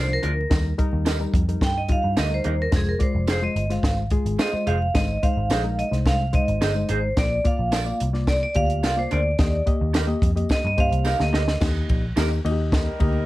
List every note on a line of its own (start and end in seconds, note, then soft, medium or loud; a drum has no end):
0.00 0.17 C2 loud
0.00 0.10 C5 medium
0.08 0.41 F3 medium
0.08 0.41 D4 medium
0.08 0.41 F4 medium
0.13 0.63 A#4 medium
0.23 0.45 D2 medium
0.23 0.31 D4 medium
0.23 0.31 F4 medium
0.23 0.31 A#4 medium
0.23 0.31 D5 medium
0.23 closed hi-hat medium
0.50 0.73 D#2 medium
0.50 0.72 G3 medium
0.50 0.72 D#4 medium
0.50 0.72 A#4 medium
0.50 kick loud
0.50 snare loud
0.50 closed hi-hat medium
0.50 tambourine medium
0.78 1.11 G3 medium
0.78 1.11 D#4 medium
0.78 1.11 A#4 loud
0.78 kick medium
0.78 closed hi-hat medium
0.93 1.25 D#2 medium
1.05 1.16 D#4 medium
1.05 1.16 G4 medium
1.05 1.16 A#4 medium
1.05 1.17 D#5 medium
1.05 snare loud
1.05 closed hi-hat loud
1.05 tambourine loud
1.20 1.42 G3 medium
1.20 1.42 D#4 medium
1.20 1.42 A#4 medium
1.34 1.55 F2 medium
1.34 kick loud
1.34 closed hi-hat medium
1.48 1.80 G3 medium
1.48 1.81 D#4 medium
1.48 1.81 A#4 medium
1.48 closed hi-hat medium
1.61 1.94 G2 medium
1.61 1.77 G5 loud
1.61 kick medium
1.61 snare loud
1.61 closed hi-hat medium
1.61 tambourine medium
1.78 1.91 D#5 medium
1.88 2.21 G3 medium
1.88 2.22 D#4 medium
1.88 2.22 F4 medium
1.88 2.19 F5 loud
1.88 kick medium
1.88 closed hi-hat medium
2.04 2.15 G2 medium
2.17 2.39 D2 medium
2.17 2.27 D#4 medium
2.17 2.27 G4 medium
2.17 2.28 A#4 medium
2.17 2.28 D#5 medium
2.17 2.33 D#5 medium
2.17 snare loud
2.17 closed hi-hat medium
2.17 tambourine medium
2.30 2.63 G3 medium
2.30 2.63 D#4 medium
2.30 2.64 A#4 medium
2.34 2.61 C5 medium
2.44 2.67 D#2 medium
2.44 2.53 D#4 medium
2.44 2.53 G4 medium
2.44 2.53 A#4 medium
2.44 2.53 D#5 medium
2.44 closed hi-hat medium
2.62 2.67 A#4 medium
2.71 2.94 F1 loud
2.71 2.94 G#3 medium
2.71 2.94 F4 medium
2.71 2.94 C5 medium
2.71 kick loud
2.71 snare loud
2.71 closed hi-hat medium
2.71 tambourine medium
2.76 2.89 G#4 medium
2.89 3.02 A#4 medium
2.99 3.32 G#3 medium
2.99 3.33 F4 medium
2.99 3.15 C5 medium
2.99 3.33 D5 medium
2.99 kick medium
2.99 closed hi-hat medium
3.15 3.47 F1 medium
3.28 3.38 F4 medium
3.28 3.38 G#4 medium
3.28 3.39 C5 loud
3.28 3.44 C5 medium
3.28 3.39 F5 medium
3.28 snare loud
3.28 closed hi-hat loud
3.28 tambourine medium
3.42 3.64 G#3 medium
3.42 3.64 F4 medium
3.42 3.64 C5 medium
3.42 3.72 D#5 medium
3.56 3.77 G1 medium
3.56 closed hi-hat medium
3.69 4.02 G#3 medium
3.69 4.02 F4 medium
3.69 4.02 C5 medium
3.69 3.97 F5 medium
3.69 snare soft
3.69 closed hi-hat medium
3.83 4.16 G#1 medium
3.83 kick medium
3.83 snare loud
3.83 closed hi-hat medium
3.83 tambourine medium
4.10 4.44 G#3 medium
4.10 4.44 F4 medium
4.10 4.44 G#4 loud
4.10 kick medium
4.10 closed hi-hat medium
4.25 4.36 G#1 medium
4.25 closed hi-hat medium
4.39 4.49 F4 medium
4.39 4.49 G#4 loud
4.39 4.50 C5 medium
4.39 4.69 D#5 loud
4.39 4.50 F5 medium
4.39 snare loud
4.39 closed hi-hat medium
4.39 tambourine medium
4.52 4.85 G#3 medium
4.52 4.85 F4 medium
4.52 4.86 C5 medium
4.52 muted picked electric bass stroke soft
4.67 4.89 F1 loud
4.67 4.75 F4 medium
4.67 4.75 G#4 medium
4.67 4.75 C5 medium
4.67 4.96 F5 medium
4.67 4.75 F5 medium
4.67 closed hi-hat medium
4.94 5.16 G#1 loud
4.94 5.16 G#3 medium
4.94 5.16 D#4 medium
4.94 5.17 C5 medium
4.94 5.23 D#5 loud
4.94 kick loud
4.94 snare loud
4.94 closed hi-hat loud
4.94 tambourine medium
5.22 5.55 G#3 medium
5.22 5.55 D#4 medium
5.22 5.55 C5 loud
5.22 5.80 F5 loud
5.22 kick medium
5.22 closed hi-hat medium
5.37 5.48 G#1 medium
5.50 5.82 A#1 medium
5.50 5.61 D#4 loud
5.50 5.61 G#4 loud
5.50 5.61 C5 loud
5.50 5.61 D#5 loud
5.50 snare loud
5.50 closed hi-hat loud
5.50 tambourine loud
5.64 5.86 G#3 medium
5.64 5.86 D#4 medium
5.64 5.86 A#4 medium
5.79 5.91 D#5 medium
5.79 closed hi-hat medium
5.91 6.03 C2 medium
5.91 6.24 G#3 medium
5.91 6.24 D#4 medium
5.91 6.24 C5 medium
5.91 snare soft
5.91 closed hi-hat medium
6.05 6.38 C2 medium
6.05 6.35 F5 loud
6.05 kick medium
6.05 snare loud
6.05 closed hi-hat medium
6.05 tambourine medium
6.33 6.66 G#3 medium
6.33 6.66 D#4 medium
6.33 6.66 C5 medium
6.33 6.92 D#5 medium
6.33 kick medium
6.33 closed hi-hat medium
6.48 6.59 G#1 loud
6.48 closed hi-hat medium
6.61 6.83 G1 loud
6.61 6.72 D#4 loud
6.61 6.72 G#4 loud
6.61 6.72 C5 loud
6.61 6.72 D#5 loud
6.61 snare loud
6.61 closed hi-hat medium
6.61 tambourine medium
6.75 7.07 G#3 medium
6.75 7.08 D#4 medium
6.75 7.08 C5 medium
6.89 7.11 G#1 medium
6.89 6.97 D#4 medium
6.89 6.97 G#4 medium
6.89 6.98 C5 medium
6.89 7.19 C5 medium
6.89 6.98 D#5 medium
6.89 closed hi-hat medium
7.16 7.39 A#1 loud
7.16 7.38 A#3 medium
7.16 7.39 F4 medium
7.16 7.39 D5 medium
7.16 7.44 D5 loud
7.16 kick loud
7.16 snare loud
7.16 closed hi-hat medium
7.16 tambourine medium
7.44 7.77 A#3 medium
7.44 7.77 F4 medium
7.44 7.78 D5 medium
7.44 7.98 F5 medium
7.44 kick medium
7.44 closed hi-hat medium
7.59 7.91 A#1 medium
7.72 7.82 D4 medium
7.72 7.83 F4 medium
7.72 7.83 A#4 medium
7.72 7.83 D5 medium
7.72 snare loud
7.72 closed hi-hat loud
7.72 tambourine loud
7.85 8.07 A#3 medium
7.85 8.08 F4 medium
7.85 8.08 D5 medium
8.00 8.44 C2 loud
8.00 closed hi-hat loud
8.13 8.46 A#3 medium
8.13 8.46 F4 medium
8.13 8.47 D5 medium
8.13 snare soft
8.27 8.42 D5 medium
8.27 kick medium
8.27 snare loud
8.27 closed hi-hat medium
8.27 tambourine medium
8.43 8.57 D5 loud
8.55 8.84 D2 medium
8.55 8.88 A#3 medium
8.55 8.88 F4 medium
8.55 8.88 G4 medium
8.55 8.99 F5 loud
8.55 kick medium
8.55 closed hi-hat medium
8.70 closed hi-hat medium
8.83 9.06 C2 loud
8.83 8.94 D4 medium
8.83 8.94 F4 medium
8.83 8.94 A#4 loud
8.83 8.94 D5 medium
8.83 snare loud
8.83 closed hi-hat medium
8.83 tambourine medium
8.96 9.30 A#3 medium
8.96 9.30 F4 medium
8.96 9.11 C5 medium
8.96 9.30 D5 medium
9.11 9.34 D2 loud
9.11 9.19 D4 medium
9.11 9.20 F4 medium
9.11 9.20 A#4 medium
9.11 9.20 D5 medium
9.11 9.64 D5 medium
9.11 closed hi-hat medium
9.39 9.61 D#2 loud
9.39 9.61 A#3 medium
9.39 9.61 G4 medium
9.39 9.61 D#5 loud
9.39 kick loud
9.39 snare loud
9.39 closed hi-hat medium
9.39 tambourine medium
9.66 9.99 A#3 medium
9.66 9.99 G4 medium
9.66 10.00 D#5 medium
9.66 kick medium
9.66 closed hi-hat medium
9.81 10.13 D#2 loud
9.94 10.04 D#4 medium
9.94 10.05 G4 medium
9.94 10.05 A#4 loud
9.94 10.05 D#5 loud
9.94 snare loud
9.94 closed hi-hat loud
9.94 tambourine loud
10.07 10.30 A#3 loud
10.07 10.30 G4 medium
10.07 10.30 D#5 loud
10.22 10.44 F2 loud
10.22 kick medium
10.22 closed hi-hat loud
10.36 10.69 A#3 medium
10.36 10.69 G4 medium
10.36 10.69 D#5 medium
10.36 closed hi-hat medium
10.49 10.65 D#5 loud
10.49 kick medium
10.49 snare loud
10.49 closed hi-hat medium
10.49 tambourine medium
10.65 10.75 G2 loud
10.65 10.79 D#5 medium
10.77 10.89 G2 medium
10.77 11.10 A#3 medium
10.77 11.10 G4 medium
10.77 11.11 C5 medium
10.77 11.22 F5 loud
10.77 kick medium
10.77 closed hi-hat medium
10.92 11.13 C2 medium
10.92 closed hi-hat medium
11.05 11.16 D#4 medium
11.05 11.16 G4 loud
11.05 11.16 A#4 loud
11.05 11.16 D#5 loud
11.05 snare medium
11.05 tambourine loud
11.19 11.31 D2 medium
11.19 11.52 A#3 medium
11.19 11.52 G4 medium
11.19 11.52 A#4 medium
11.19 11.60 D#5 medium
11.19 snare medium
11.33 11.55 D2 loud
11.33 11.41 D#4 medium
11.33 11.41 G4 medium
11.33 11.42 A#4 medium
11.33 11.42 D#5 medium
11.33 snare medium
11.48 snare medium
11.61 11.83 D#2 loud
11.61 12.05 A#3 medium
11.61 12.05 D#4 medium
11.61 12.04 G4 medium
11.61 12.05 D#5 medium
11.61 kick loud
11.61 snare loud
11.61 crash loud
11.61 tambourine medium
11.89 12.11 A#1 medium
11.89 kick loud
11.89 ride medium
12.16 12.39 D#2 medium
12.16 12.39 A#3 medium
12.16 12.27 D#4 loud
12.16 12.39 D#4 medium
12.16 12.27 G4 loud
12.16 12.39 G4 medium
12.16 12.27 A#4 medium
12.16 12.39 A#4 loud
12.16 12.28 D#5 loud
12.16 snare loud
12.16 ride medium
12.16 tambourine loud
12.45 12.88 D#2 medium
12.45 12.88 A#3 loud
12.45 12.88 D#4 medium
12.45 12.52 F#4 medium
12.45 12.88 D#5 loud
12.45 ride medium
12.51 12.91 G4 medium
12.72 13.26 G3 medium
12.72 13.26 D#4 medium
12.72 13.26 A#4 medium
12.72 kick loud
12.72 snare loud
12.72 ride medium
12.72 tambourine medium
13.00 13.22 D2 medium
13.00 13.26 A#3 medium
13.00 13.26 D#4 medium
13.00 13.26 G4 medium
13.00 13.26 D#5 medium
13.00 kick loud
13.00 ride medium